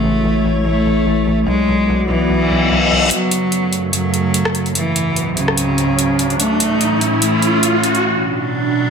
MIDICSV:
0, 0, Header, 1, 7, 480
1, 0, Start_track
1, 0, Key_signature, 3, "minor"
1, 0, Tempo, 410959
1, 1711, Time_signature, 4, 2, 24, 8
1, 10395, End_track
2, 0, Start_track
2, 0, Title_t, "Ambient pad"
2, 0, Program_c, 0, 92
2, 0, Note_on_c, 0, 57, 80
2, 0, Note_on_c, 0, 64, 78
2, 0, Note_on_c, 0, 73, 90
2, 1692, Note_off_c, 0, 57, 0
2, 1692, Note_off_c, 0, 64, 0
2, 1692, Note_off_c, 0, 73, 0
2, 1712, Note_on_c, 0, 59, 80
2, 1712, Note_on_c, 0, 66, 73
2, 1712, Note_on_c, 0, 74, 88
2, 3612, Note_off_c, 0, 59, 0
2, 3613, Note_off_c, 0, 66, 0
2, 3613, Note_off_c, 0, 74, 0
2, 3631, Note_on_c, 0, 42, 79
2, 3631, Note_on_c, 0, 49, 76
2, 3631, Note_on_c, 0, 57, 89
2, 5532, Note_off_c, 0, 42, 0
2, 5532, Note_off_c, 0, 49, 0
2, 5532, Note_off_c, 0, 57, 0
2, 5551, Note_on_c, 0, 37, 83
2, 5551, Note_on_c, 0, 44, 75
2, 5551, Note_on_c, 0, 54, 94
2, 7452, Note_off_c, 0, 37, 0
2, 7452, Note_off_c, 0, 44, 0
2, 7452, Note_off_c, 0, 54, 0
2, 7472, Note_on_c, 0, 45, 88
2, 7472, Note_on_c, 0, 52, 76
2, 7472, Note_on_c, 0, 61, 90
2, 9372, Note_off_c, 0, 45, 0
2, 9372, Note_off_c, 0, 52, 0
2, 9372, Note_off_c, 0, 61, 0
2, 9390, Note_on_c, 0, 47, 86
2, 9391, Note_on_c, 0, 54, 81
2, 9391, Note_on_c, 0, 62, 91
2, 10395, Note_off_c, 0, 47, 0
2, 10395, Note_off_c, 0, 54, 0
2, 10395, Note_off_c, 0, 62, 0
2, 10395, End_track
3, 0, Start_track
3, 0, Title_t, "Cello"
3, 0, Program_c, 1, 42
3, 0, Note_on_c, 1, 57, 100
3, 665, Note_off_c, 1, 57, 0
3, 752, Note_on_c, 1, 57, 98
3, 1624, Note_off_c, 1, 57, 0
3, 1711, Note_on_c, 1, 56, 98
3, 2344, Note_off_c, 1, 56, 0
3, 2431, Note_on_c, 1, 52, 101
3, 3544, Note_off_c, 1, 52, 0
3, 3631, Note_on_c, 1, 54, 104
3, 4504, Note_off_c, 1, 54, 0
3, 4590, Note_on_c, 1, 54, 96
3, 5464, Note_off_c, 1, 54, 0
3, 5551, Note_on_c, 1, 52, 98
3, 6184, Note_off_c, 1, 52, 0
3, 6271, Note_on_c, 1, 49, 104
3, 7384, Note_off_c, 1, 49, 0
3, 7471, Note_on_c, 1, 57, 106
3, 8344, Note_off_c, 1, 57, 0
3, 8431, Note_on_c, 1, 57, 100
3, 9304, Note_off_c, 1, 57, 0
3, 10395, End_track
4, 0, Start_track
4, 0, Title_t, "Wobble bass"
4, 0, Program_c, 2, 39
4, 0, Note_on_c, 2, 33, 86
4, 1690, Note_off_c, 2, 33, 0
4, 1712, Note_on_c, 2, 35, 86
4, 3610, Note_off_c, 2, 35, 0
4, 10395, End_track
5, 0, Start_track
5, 0, Title_t, "Reverse cymbal"
5, 0, Program_c, 3, 119
5, 2671, Note_on_c, 3, 60, 76
5, 3631, Note_off_c, 3, 60, 0
5, 10395, End_track
6, 0, Start_track
6, 0, Title_t, "Riser"
6, 0, Program_c, 4, 103
6, 3631, Note_on_c, 4, 60, 75
6, 9391, Note_off_c, 4, 60, 0
6, 10395, End_track
7, 0, Start_track
7, 0, Title_t, "Drums"
7, 511, Note_on_c, 9, 46, 88
7, 628, Note_off_c, 9, 46, 0
7, 2431, Note_on_c, 9, 46, 88
7, 2548, Note_off_c, 9, 46, 0
7, 3631, Note_on_c, 9, 42, 82
7, 3748, Note_off_c, 9, 42, 0
7, 3871, Note_on_c, 9, 42, 81
7, 3988, Note_off_c, 9, 42, 0
7, 4111, Note_on_c, 9, 42, 53
7, 4228, Note_off_c, 9, 42, 0
7, 4351, Note_on_c, 9, 42, 55
7, 4468, Note_off_c, 9, 42, 0
7, 4591, Note_on_c, 9, 42, 83
7, 4708, Note_off_c, 9, 42, 0
7, 4831, Note_on_c, 9, 42, 54
7, 4948, Note_off_c, 9, 42, 0
7, 5071, Note_on_c, 9, 42, 86
7, 5188, Note_off_c, 9, 42, 0
7, 5202, Note_on_c, 9, 37, 73
7, 5311, Note_on_c, 9, 42, 61
7, 5319, Note_off_c, 9, 37, 0
7, 5428, Note_off_c, 9, 42, 0
7, 5442, Note_on_c, 9, 42, 38
7, 5551, Note_off_c, 9, 42, 0
7, 5551, Note_on_c, 9, 42, 85
7, 5668, Note_off_c, 9, 42, 0
7, 5791, Note_on_c, 9, 42, 79
7, 5908, Note_off_c, 9, 42, 0
7, 6031, Note_on_c, 9, 42, 54
7, 6148, Note_off_c, 9, 42, 0
7, 6271, Note_on_c, 9, 42, 52
7, 6388, Note_off_c, 9, 42, 0
7, 6402, Note_on_c, 9, 37, 50
7, 6511, Note_on_c, 9, 42, 83
7, 6519, Note_off_c, 9, 37, 0
7, 6628, Note_off_c, 9, 42, 0
7, 6751, Note_on_c, 9, 42, 51
7, 6868, Note_off_c, 9, 42, 0
7, 6991, Note_on_c, 9, 42, 81
7, 7108, Note_off_c, 9, 42, 0
7, 7231, Note_on_c, 9, 42, 60
7, 7348, Note_off_c, 9, 42, 0
7, 7362, Note_on_c, 9, 42, 35
7, 7471, Note_off_c, 9, 42, 0
7, 7471, Note_on_c, 9, 42, 80
7, 7588, Note_off_c, 9, 42, 0
7, 7711, Note_on_c, 9, 42, 81
7, 7828, Note_off_c, 9, 42, 0
7, 7951, Note_on_c, 9, 42, 54
7, 8068, Note_off_c, 9, 42, 0
7, 8191, Note_on_c, 9, 42, 54
7, 8308, Note_off_c, 9, 42, 0
7, 8431, Note_on_c, 9, 42, 82
7, 8548, Note_off_c, 9, 42, 0
7, 8671, Note_on_c, 9, 42, 49
7, 8788, Note_off_c, 9, 42, 0
7, 8911, Note_on_c, 9, 42, 80
7, 9028, Note_off_c, 9, 42, 0
7, 9151, Note_on_c, 9, 42, 59
7, 9268, Note_off_c, 9, 42, 0
7, 9282, Note_on_c, 9, 42, 36
7, 9399, Note_off_c, 9, 42, 0
7, 10395, End_track
0, 0, End_of_file